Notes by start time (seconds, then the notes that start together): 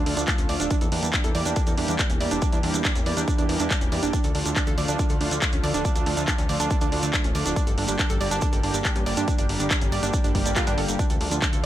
0.06 D2 D3 F3 A3 D4 F4, open hi-hat
0.17 D2 D4, closed hi-hat, shekere
0.28 D3 F3 A3 D4 F4, kick, clap, closed hi-hat, shekere
0.38 D1 D3 F3 A3 C#4 F4, closed hi-hat, shekere
0.49 D2 D5, open hi-hat
0.60 D1 D3 F3 A3 D4 F4, closed hi-hat, shekere
0.71 E3 G3 A#3 D4 G4, kick, closed hi-hat, shekere
0.81 E2 A4, closed hi-hat, shekere
0.92 E2 E3 G3 A#3 D4 G4, open hi-hat
1.03 E2 D4, closed hi-hat, shekere
1.13 E3 G3 A#3 D4 G4, kick, clap, closed hi-hat, shekere
1.24 E2 E3 G3 A#3 G4 A4, closed hi-hat, shekere
1.35 E2 D5, open hi-hat
1.45 E2 E3 G3 A#3 D4 G4, closed hi-hat, shekere
1.56 E3 G3 A#3 D4 G4, kick, closed hi-hat, shekere
1.67 E2 A4, closed hi-hat, shekere
1.78 E2 E3 G3 A#3 D4 G4, open hi-hat
1.88 E2 D4, closed hi-hat, shekere
1.99 E3 G3 A#3 D4 G4, kick, clap, closed hi-hat, shekere
2.10 E1 E3 G3 A#3 C#4 G4, closed hi-hat, shekere
2.21 E2 D5, open hi-hat
2.31 E1 E3 G3 A#3 D4 G4, closed hi-hat, shekere
2.42 E3 G3 A#3 D4 G4, kick, closed hi-hat, shekere
2.52 E2 D4, closed hi-hat, shekere
2.63 E2 E3 G3 A#3 D4 G4, open hi-hat
2.74 E2 D4, closed hi-hat, shekere
2.85 E3 G3 A#3 D4 G4, kick, clap, closed hi-hat, shekere
2.95 E2 E3 G3 A#3 C#4 G4, closed hi-hat, shekere
3.06 E2 D5, open hi-hat
3.17 E2 E3 G3 A#3 D4 G4, closed hi-hat, shekere
3.28 E3 G3 A#3 D4 G4, kick, closed hi-hat, shekere
3.38 E2 D4, closed hi-hat, shekere
3.49 E2 E3 G3 A#3 D4 G4, open hi-hat
3.59 E2 D4, closed hi-hat, shekere
3.71 E3 G3 A#3 D4 G4, kick, clap, closed hi-hat, shekere
3.81 E1 E3 G3 A#3 C#4 G4, closed hi-hat, shekere
3.92 E2 D5, open hi-hat
4.03 E1 E3 G3 A#3 D4 G4, closed hi-hat, shekere
4.13 D3 F3 A3 D4 F4, kick, closed hi-hat, shekere
4.24 D2 A4, closed hi-hat, shekere
4.35 D2 D3 F3 A3 D4 F4, open hi-hat
4.45 D2 D4, closed hi-hat, shekere
4.56 D3 F3 A3 D4 F4, kick, clap, closed hi-hat, shekere
4.66 D2 D3 F3 A3 F4 A4, closed hi-hat, shekere
4.78 D2 D5, open hi-hat
4.88 D2 D3 F3 A3 D4 F4, closed hi-hat, shekere
4.99 D3 F3 A3 D4 F4, kick, closed hi-hat, shekere
5.09 D2 A4, closed hi-hat, shekere
5.21 D2 D3 F3 A3 D4 F4, open hi-hat
5.31 D2 D4, closed hi-hat, shekere
5.42 D3 F3 A3 D4 F4, kick, clap, closed hi-hat, shekere
5.52 D1 D3 F3 A3 C#4 F4, closed hi-hat, shekere
5.63 D2 D5, open hi-hat
5.74 D1 D3 F3 A3 D4 F4, closed hi-hat, shekere
5.85 D3 F3 A3 D4 F4, kick, closed hi-hat, shekere
5.96 D2 D4, closed hi-hat, shekere
6.06 D2 D3 F3 A3 D4 F4, open hi-hat
6.17 D2 D4, closed hi-hat, shekere
6.28 D3 F3 A3 D4 F4, kick, clap, closed hi-hat, shekere
6.38 D2 D3 F3 A3 C#4 F4, closed hi-hat, shekere
6.49 D2 D5, open hi-hat
6.60 D2 D3 F3 A3 D4 F4, closed hi-hat, shekere
6.70 D3 F3 A3 D4 F4, kick, closed hi-hat, shekere
6.81 D2 D4, closed hi-hat, shekere
6.92 D2 D3 F3 A3 D4 F4, open hi-hat
7.02 D2 D4, closed hi-hat, shekere
7.13 D3 F3 A3 D4 F4, kick, clap, closed hi-hat, shekere
7.24 D1 D3 F3 A3 C#4 F4, closed hi-hat, shekere
7.35 D2 D5, open hi-hat
7.46 D1 D3 F3 A3 D4 F4, closed hi-hat, shekere
7.56 D3 G3 A#3 D4 G4, kick, closed hi-hat, shekere
7.67 G1 A4, closed hi-hat, shekere
7.78 G1 D3 G3 A#3 D4 G4, open hi-hat
7.88 G1 D4, closed hi-hat, shekere
7.99 D3 G3 A#3 D4 G4, kick, clap, closed hi-hat, shekere
8.09 G1 D3 G3 A#3 G4 A4, closed hi-hat, shekere
8.21 G1 D5, open hi-hat
8.31 G1 D3 G3 A#3 D4 G4, closed hi-hat, shekere
8.41 D3 G3 A#3 D4 G4, kick, closed hi-hat, shekere
8.53 G1 A4, closed hi-hat, shekere
8.63 G1 D3 G3 A#3 D4 G4, open hi-hat
8.74 G1 D4, closed hi-hat, shekere
8.85 D3 G3 A#3 D4 G4, kick, clap, closed hi-hat, shekere
8.96 G2 D3 G3 A#3 C#4 G4, closed hi-hat, shekere
9.06 G1 D5, open hi-hat
9.17 G2 D3 G3 A#3 D4 G4, closed hi-hat, shekere
9.28 D3 G3 A#3 D4 G4, kick, closed hi-hat, shekere
9.38 G1 D4, closed hi-hat, shekere
9.49 G1 D3 G3 A#3 D4 G4, open hi-hat
9.60 G1 D4, closed hi-hat, shekere
9.71 D3 G3 A#3 D4 G4, kick, clap, closed hi-hat, shekere
9.81 G1 D3 G3 A#3 C#4 G4, closed hi-hat, shekere
9.92 G1 D5, open hi-hat
10.03 G1 D3 G3 A#3 D4 G4, closed hi-hat, shekere
10.13 D3 G3 A#3 D4 G4, kick, closed hi-hat, shekere
10.24 G1 D4, closed hi-hat, shekere
10.35 G1 D3 G3 A#3 G4 D5, kick, open hi-hat
10.46 G1 D5, closed hi-hat, shekere
10.56 D3 G3 A#3 F4 G4, kick, clap, closed hi-hat, shekere
10.67 G2 D3 G3 A#3 D4 G4, closed hi-hat, shekere
10.78 G1 A4, open hi-hat
10.88 G1 D3 G3 A#3 G4, closed hi-hat, shekere
10.99 D3 F3 A3 D4 F4, kick, closed hi-hat, shekere
11.10 D2 A4, closed hi-hat, shekere
11.21 D2 D3 F3 A3 D4 F4, open hi-hat
11.31 D2 D4, closed hi-hat, shekere
11.42 D3 F3 A3 D4 F4, kick, clap, closed hi-hat, shekere
11.53 D2 D3 F3 A3 F4 A4, closed hi-hat, shekere